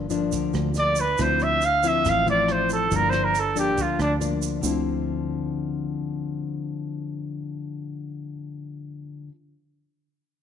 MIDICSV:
0, 0, Header, 1, 5, 480
1, 0, Start_track
1, 0, Key_signature, -1, "minor"
1, 0, Tempo, 431965
1, 1316, Time_signature, 4, 2, 24, 8
1, 11588, End_track
2, 0, Start_track
2, 0, Title_t, "Trumpet"
2, 0, Program_c, 0, 56
2, 874, Note_on_c, 0, 74, 85
2, 1113, Note_on_c, 0, 71, 83
2, 1129, Note_off_c, 0, 74, 0
2, 1358, Note_on_c, 0, 72, 79
2, 1375, Note_off_c, 0, 71, 0
2, 1589, Note_on_c, 0, 76, 91
2, 1606, Note_off_c, 0, 72, 0
2, 1834, Note_on_c, 0, 77, 90
2, 1851, Note_off_c, 0, 76, 0
2, 2085, Note_on_c, 0, 76, 86
2, 2101, Note_off_c, 0, 77, 0
2, 2325, Note_on_c, 0, 77, 86
2, 2342, Note_off_c, 0, 76, 0
2, 2539, Note_off_c, 0, 77, 0
2, 2555, Note_on_c, 0, 74, 79
2, 2799, Note_on_c, 0, 72, 75
2, 2816, Note_off_c, 0, 74, 0
2, 3016, Note_off_c, 0, 72, 0
2, 3031, Note_on_c, 0, 69, 73
2, 3283, Note_on_c, 0, 70, 82
2, 3300, Note_off_c, 0, 69, 0
2, 3443, Note_on_c, 0, 72, 86
2, 3459, Note_off_c, 0, 70, 0
2, 3605, Note_on_c, 0, 70, 74
2, 3622, Note_off_c, 0, 72, 0
2, 3771, Note_on_c, 0, 69, 70
2, 3788, Note_off_c, 0, 70, 0
2, 3979, Note_off_c, 0, 69, 0
2, 3985, Note_on_c, 0, 67, 76
2, 4241, Note_on_c, 0, 65, 65
2, 4257, Note_off_c, 0, 67, 0
2, 4457, Note_off_c, 0, 65, 0
2, 4463, Note_on_c, 0, 62, 70
2, 4598, Note_off_c, 0, 62, 0
2, 11588, End_track
3, 0, Start_track
3, 0, Title_t, "Nylon-string guitar"
3, 0, Program_c, 1, 24
3, 0, Note_on_c, 1, 43, 53
3, 112, Note_on_c, 1, 53, 58
3, 117, Note_on_c, 1, 58, 53
3, 121, Note_on_c, 1, 62, 62
3, 331, Note_off_c, 1, 43, 0
3, 358, Note_on_c, 1, 50, 48
3, 795, Note_off_c, 1, 53, 0
3, 797, Note_off_c, 1, 58, 0
3, 800, Note_off_c, 1, 62, 0
3, 831, Note_on_c, 1, 53, 46
3, 837, Note_on_c, 1, 58, 50
3, 842, Note_on_c, 1, 62, 54
3, 1143, Note_off_c, 1, 53, 0
3, 1143, Note_off_c, 1, 58, 0
3, 1148, Note_off_c, 1, 62, 0
3, 1292, Note_off_c, 1, 50, 0
3, 1317, Note_on_c, 1, 53, 50
3, 1318, Note_on_c, 1, 50, 54
3, 1322, Note_on_c, 1, 60, 55
3, 1328, Note_on_c, 1, 64, 56
3, 1792, Note_off_c, 1, 53, 0
3, 1795, Note_off_c, 1, 60, 0
3, 1798, Note_off_c, 1, 64, 0
3, 2034, Note_on_c, 1, 53, 52
3, 2038, Note_on_c, 1, 60, 61
3, 2042, Note_on_c, 1, 64, 65
3, 2252, Note_off_c, 1, 50, 0
3, 2280, Note_on_c, 1, 45, 52
3, 2476, Note_off_c, 1, 53, 0
3, 2477, Note_off_c, 1, 60, 0
3, 2479, Note_off_c, 1, 64, 0
3, 2512, Note_on_c, 1, 53, 48
3, 2517, Note_on_c, 1, 60, 60
3, 2521, Note_on_c, 1, 64, 57
3, 3195, Note_off_c, 1, 53, 0
3, 3196, Note_off_c, 1, 60, 0
3, 3199, Note_off_c, 1, 64, 0
3, 3212, Note_off_c, 1, 45, 0
3, 3236, Note_on_c, 1, 43, 51
3, 3236, Note_on_c, 1, 53, 48
3, 3243, Note_on_c, 1, 58, 48
3, 3245, Note_on_c, 1, 62, 56
3, 3710, Note_off_c, 1, 53, 0
3, 3715, Note_off_c, 1, 58, 0
3, 3716, Note_off_c, 1, 62, 0
3, 3947, Note_on_c, 1, 53, 51
3, 3954, Note_on_c, 1, 58, 54
3, 3961, Note_on_c, 1, 62, 64
3, 4171, Note_off_c, 1, 43, 0
3, 4195, Note_on_c, 1, 50, 50
3, 4632, Note_off_c, 1, 53, 0
3, 4635, Note_off_c, 1, 58, 0
3, 4638, Note_off_c, 1, 62, 0
3, 4671, Note_on_c, 1, 53, 43
3, 4674, Note_on_c, 1, 58, 53
3, 4683, Note_on_c, 1, 62, 55
3, 5111, Note_off_c, 1, 50, 0
3, 5114, Note_off_c, 1, 58, 0
3, 5115, Note_off_c, 1, 53, 0
3, 5119, Note_off_c, 1, 62, 0
3, 5124, Note_on_c, 1, 50, 56
3, 5155, Note_on_c, 1, 53, 55
3, 5173, Note_on_c, 1, 60, 58
3, 5191, Note_on_c, 1, 64, 63
3, 10322, Note_off_c, 1, 50, 0
3, 10353, Note_off_c, 1, 53, 0
3, 10371, Note_off_c, 1, 60, 0
3, 10389, Note_off_c, 1, 64, 0
3, 11588, End_track
4, 0, Start_track
4, 0, Title_t, "Fingered electric bass"
4, 0, Program_c, 2, 33
4, 0, Note_on_c, 2, 31, 81
4, 365, Note_off_c, 2, 31, 0
4, 365, Note_on_c, 2, 38, 84
4, 584, Note_off_c, 2, 38, 0
4, 598, Note_on_c, 2, 38, 84
4, 1272, Note_off_c, 2, 38, 0
4, 1325, Note_on_c, 2, 38, 87
4, 2285, Note_on_c, 2, 33, 91
4, 2301, Note_off_c, 2, 38, 0
4, 2503, Note_off_c, 2, 33, 0
4, 2523, Note_on_c, 2, 33, 79
4, 3194, Note_off_c, 2, 33, 0
4, 3238, Note_on_c, 2, 31, 83
4, 4199, Note_off_c, 2, 31, 0
4, 4199, Note_on_c, 2, 38, 87
4, 4419, Note_off_c, 2, 38, 0
4, 4435, Note_on_c, 2, 38, 80
4, 5110, Note_off_c, 2, 38, 0
4, 5149, Note_on_c, 2, 38, 83
4, 10302, Note_off_c, 2, 38, 0
4, 11588, End_track
5, 0, Start_track
5, 0, Title_t, "Drums"
5, 113, Note_on_c, 9, 82, 61
5, 126, Note_on_c, 9, 42, 24
5, 224, Note_off_c, 9, 82, 0
5, 237, Note_off_c, 9, 42, 0
5, 355, Note_on_c, 9, 82, 58
5, 364, Note_on_c, 9, 36, 57
5, 364, Note_on_c, 9, 42, 39
5, 466, Note_off_c, 9, 82, 0
5, 475, Note_off_c, 9, 36, 0
5, 475, Note_off_c, 9, 42, 0
5, 594, Note_on_c, 9, 82, 22
5, 610, Note_on_c, 9, 37, 52
5, 610, Note_on_c, 9, 42, 26
5, 705, Note_off_c, 9, 82, 0
5, 721, Note_off_c, 9, 37, 0
5, 721, Note_off_c, 9, 42, 0
5, 827, Note_on_c, 9, 82, 43
5, 848, Note_on_c, 9, 42, 43
5, 938, Note_off_c, 9, 82, 0
5, 959, Note_off_c, 9, 42, 0
5, 1063, Note_on_c, 9, 82, 63
5, 1089, Note_on_c, 9, 42, 25
5, 1174, Note_off_c, 9, 82, 0
5, 1200, Note_off_c, 9, 42, 0
5, 1308, Note_on_c, 9, 82, 59
5, 1323, Note_on_c, 9, 36, 55
5, 1324, Note_on_c, 9, 37, 55
5, 1324, Note_on_c, 9, 42, 42
5, 1419, Note_off_c, 9, 82, 0
5, 1434, Note_off_c, 9, 36, 0
5, 1436, Note_off_c, 9, 37, 0
5, 1436, Note_off_c, 9, 42, 0
5, 1552, Note_on_c, 9, 82, 23
5, 1570, Note_on_c, 9, 42, 26
5, 1664, Note_off_c, 9, 82, 0
5, 1682, Note_off_c, 9, 42, 0
5, 1792, Note_on_c, 9, 82, 44
5, 1807, Note_on_c, 9, 42, 40
5, 1903, Note_off_c, 9, 82, 0
5, 1918, Note_off_c, 9, 42, 0
5, 2036, Note_on_c, 9, 82, 58
5, 2052, Note_on_c, 9, 42, 27
5, 2147, Note_off_c, 9, 82, 0
5, 2164, Note_off_c, 9, 42, 0
5, 2279, Note_on_c, 9, 82, 55
5, 2285, Note_on_c, 9, 36, 56
5, 2290, Note_on_c, 9, 37, 59
5, 2290, Note_on_c, 9, 42, 43
5, 2390, Note_off_c, 9, 82, 0
5, 2397, Note_off_c, 9, 36, 0
5, 2401, Note_off_c, 9, 37, 0
5, 2401, Note_off_c, 9, 42, 0
5, 2525, Note_on_c, 9, 82, 22
5, 2527, Note_on_c, 9, 42, 26
5, 2636, Note_off_c, 9, 82, 0
5, 2638, Note_off_c, 9, 42, 0
5, 2760, Note_on_c, 9, 37, 53
5, 2760, Note_on_c, 9, 42, 44
5, 2871, Note_off_c, 9, 37, 0
5, 2871, Note_off_c, 9, 42, 0
5, 2994, Note_on_c, 9, 82, 61
5, 3001, Note_on_c, 9, 42, 24
5, 3105, Note_off_c, 9, 82, 0
5, 3112, Note_off_c, 9, 42, 0
5, 3237, Note_on_c, 9, 82, 62
5, 3241, Note_on_c, 9, 42, 40
5, 3242, Note_on_c, 9, 36, 51
5, 3348, Note_off_c, 9, 82, 0
5, 3352, Note_off_c, 9, 42, 0
5, 3353, Note_off_c, 9, 36, 0
5, 3471, Note_on_c, 9, 82, 22
5, 3478, Note_on_c, 9, 37, 54
5, 3478, Note_on_c, 9, 42, 25
5, 3582, Note_off_c, 9, 82, 0
5, 3589, Note_off_c, 9, 37, 0
5, 3589, Note_off_c, 9, 42, 0
5, 3720, Note_on_c, 9, 82, 45
5, 3721, Note_on_c, 9, 42, 41
5, 3831, Note_off_c, 9, 82, 0
5, 3832, Note_off_c, 9, 42, 0
5, 3960, Note_on_c, 9, 42, 25
5, 3961, Note_on_c, 9, 82, 59
5, 4072, Note_off_c, 9, 42, 0
5, 4072, Note_off_c, 9, 82, 0
5, 4194, Note_on_c, 9, 42, 39
5, 4199, Note_on_c, 9, 36, 56
5, 4199, Note_on_c, 9, 82, 54
5, 4305, Note_off_c, 9, 42, 0
5, 4310, Note_off_c, 9, 82, 0
5, 4311, Note_off_c, 9, 36, 0
5, 4440, Note_on_c, 9, 37, 55
5, 4440, Note_on_c, 9, 42, 23
5, 4443, Note_on_c, 9, 82, 22
5, 4551, Note_off_c, 9, 37, 0
5, 4551, Note_off_c, 9, 42, 0
5, 4554, Note_off_c, 9, 82, 0
5, 4680, Note_on_c, 9, 42, 35
5, 4683, Note_on_c, 9, 82, 47
5, 4792, Note_off_c, 9, 42, 0
5, 4794, Note_off_c, 9, 82, 0
5, 4913, Note_on_c, 9, 82, 64
5, 4920, Note_on_c, 9, 42, 22
5, 5024, Note_off_c, 9, 82, 0
5, 5032, Note_off_c, 9, 42, 0
5, 5148, Note_on_c, 9, 82, 95
5, 5260, Note_off_c, 9, 82, 0
5, 11588, End_track
0, 0, End_of_file